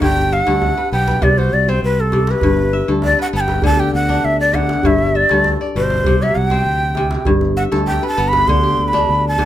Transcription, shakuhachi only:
0, 0, Header, 1, 2, 480
1, 0, Start_track
1, 0, Key_signature, 1, "major"
1, 0, Tempo, 604230
1, 14, Time_signature, 4, 2, 24, 8
1, 7508, End_track
2, 0, Start_track
2, 0, Title_t, "Shakuhachi"
2, 0, Program_c, 0, 77
2, 22, Note_on_c, 0, 79, 92
2, 262, Note_on_c, 0, 78, 84
2, 274, Note_off_c, 0, 79, 0
2, 731, Note_off_c, 0, 78, 0
2, 736, Note_on_c, 0, 79, 90
2, 976, Note_on_c, 0, 74, 84
2, 988, Note_off_c, 0, 79, 0
2, 1096, Note_on_c, 0, 72, 84
2, 1108, Note_off_c, 0, 74, 0
2, 1218, Note_on_c, 0, 74, 82
2, 1230, Note_off_c, 0, 72, 0
2, 1345, Note_on_c, 0, 72, 88
2, 1357, Note_off_c, 0, 74, 0
2, 1456, Note_off_c, 0, 72, 0
2, 1462, Note_on_c, 0, 71, 87
2, 1591, Note_on_c, 0, 69, 83
2, 1603, Note_off_c, 0, 71, 0
2, 1832, Note_on_c, 0, 71, 88
2, 1844, Note_off_c, 0, 69, 0
2, 2302, Note_off_c, 0, 71, 0
2, 2420, Note_on_c, 0, 74, 95
2, 2530, Note_off_c, 0, 74, 0
2, 2555, Note_on_c, 0, 78, 91
2, 2602, Note_off_c, 0, 78, 0
2, 2668, Note_on_c, 0, 81, 88
2, 2705, Note_on_c, 0, 79, 96
2, 2713, Note_off_c, 0, 81, 0
2, 2882, Note_off_c, 0, 79, 0
2, 2902, Note_on_c, 0, 81, 98
2, 3015, Note_on_c, 0, 79, 93
2, 3027, Note_off_c, 0, 81, 0
2, 3130, Note_off_c, 0, 79, 0
2, 3136, Note_on_c, 0, 78, 91
2, 3375, Note_on_c, 0, 76, 97
2, 3386, Note_off_c, 0, 78, 0
2, 3495, Note_off_c, 0, 76, 0
2, 3499, Note_on_c, 0, 74, 83
2, 3620, Note_on_c, 0, 78, 87
2, 3632, Note_off_c, 0, 74, 0
2, 3863, Note_on_c, 0, 76, 86
2, 3875, Note_off_c, 0, 78, 0
2, 4101, Note_on_c, 0, 74, 94
2, 4113, Note_off_c, 0, 76, 0
2, 4362, Note_off_c, 0, 74, 0
2, 4585, Note_on_c, 0, 72, 92
2, 4944, Note_on_c, 0, 76, 91
2, 4956, Note_off_c, 0, 72, 0
2, 5052, Note_on_c, 0, 78, 96
2, 5064, Note_off_c, 0, 76, 0
2, 5163, Note_off_c, 0, 78, 0
2, 5163, Note_on_c, 0, 79, 96
2, 5772, Note_off_c, 0, 79, 0
2, 6012, Note_on_c, 0, 78, 85
2, 6066, Note_off_c, 0, 78, 0
2, 6255, Note_on_c, 0, 79, 90
2, 6403, Note_off_c, 0, 79, 0
2, 6416, Note_on_c, 0, 81, 98
2, 6578, Note_on_c, 0, 83, 103
2, 6590, Note_off_c, 0, 81, 0
2, 6737, Note_on_c, 0, 84, 98
2, 6749, Note_off_c, 0, 83, 0
2, 7054, Note_on_c, 0, 83, 87
2, 7066, Note_off_c, 0, 84, 0
2, 7369, Note_off_c, 0, 83, 0
2, 7374, Note_on_c, 0, 81, 100
2, 7508, Note_off_c, 0, 81, 0
2, 7508, End_track
0, 0, End_of_file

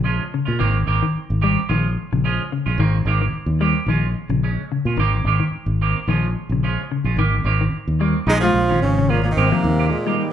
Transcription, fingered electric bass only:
0, 0, Header, 1, 3, 480
1, 0, Start_track
1, 0, Tempo, 547945
1, 1488, Time_signature, 4, 2, 24, 8
1, 9047, End_track
2, 0, Start_track
2, 0, Title_t, "Fingered electric bass"
2, 0, Program_c, 0, 33
2, 0, Note_on_c, 0, 34, 75
2, 162, Note_off_c, 0, 34, 0
2, 421, Note_on_c, 0, 46, 73
2, 525, Note_off_c, 0, 46, 0
2, 531, Note_on_c, 0, 32, 96
2, 757, Note_off_c, 0, 32, 0
2, 765, Note_on_c, 0, 32, 81
2, 887, Note_off_c, 0, 32, 0
2, 1139, Note_on_c, 0, 32, 79
2, 1365, Note_off_c, 0, 32, 0
2, 1484, Note_on_c, 0, 34, 82
2, 1714, Note_off_c, 0, 34, 0
2, 1860, Note_on_c, 0, 34, 69
2, 2086, Note_off_c, 0, 34, 0
2, 2332, Note_on_c, 0, 34, 71
2, 2429, Note_off_c, 0, 34, 0
2, 2434, Note_on_c, 0, 32, 102
2, 2669, Note_off_c, 0, 32, 0
2, 2675, Note_on_c, 0, 32, 83
2, 2910, Note_off_c, 0, 32, 0
2, 3034, Note_on_c, 0, 39, 81
2, 3273, Note_off_c, 0, 39, 0
2, 3385, Note_on_c, 0, 34, 82
2, 3625, Note_off_c, 0, 34, 0
2, 3761, Note_on_c, 0, 34, 80
2, 3997, Note_off_c, 0, 34, 0
2, 4251, Note_on_c, 0, 46, 78
2, 4346, Note_off_c, 0, 46, 0
2, 4351, Note_on_c, 0, 32, 95
2, 4589, Note_off_c, 0, 32, 0
2, 4594, Note_on_c, 0, 32, 87
2, 4724, Note_off_c, 0, 32, 0
2, 4960, Note_on_c, 0, 32, 85
2, 5197, Note_off_c, 0, 32, 0
2, 5322, Note_on_c, 0, 34, 78
2, 5555, Note_off_c, 0, 34, 0
2, 5689, Note_on_c, 0, 34, 75
2, 5922, Note_off_c, 0, 34, 0
2, 6170, Note_on_c, 0, 34, 72
2, 6273, Note_off_c, 0, 34, 0
2, 6278, Note_on_c, 0, 32, 92
2, 6513, Note_off_c, 0, 32, 0
2, 6521, Note_on_c, 0, 32, 77
2, 6754, Note_off_c, 0, 32, 0
2, 6899, Note_on_c, 0, 39, 81
2, 7127, Note_off_c, 0, 39, 0
2, 7242, Note_on_c, 0, 34, 110
2, 7474, Note_off_c, 0, 34, 0
2, 7480, Note_on_c, 0, 34, 86
2, 7713, Note_off_c, 0, 34, 0
2, 7726, Note_on_c, 0, 32, 87
2, 8183, Note_off_c, 0, 32, 0
2, 8209, Note_on_c, 0, 32, 109
2, 8331, Note_off_c, 0, 32, 0
2, 8445, Note_on_c, 0, 39, 100
2, 8675, Note_off_c, 0, 39, 0
2, 9047, End_track
3, 0, Start_track
3, 0, Title_t, "Muted fingered electric bass strokes"
3, 1007, Note_on_c, 9, 29, 32
3, 1095, Note_off_c, 9, 29, 0
3, 2914, Note_on_c, 9, 29, 36
3, 3001, Note_off_c, 9, 29, 0
3, 4833, Note_on_c, 9, 29, 34
3, 4920, Note_off_c, 9, 29, 0
3, 6768, Note_on_c, 9, 29, 36
3, 6856, Note_off_c, 9, 29, 0
3, 9047, End_track
0, 0, End_of_file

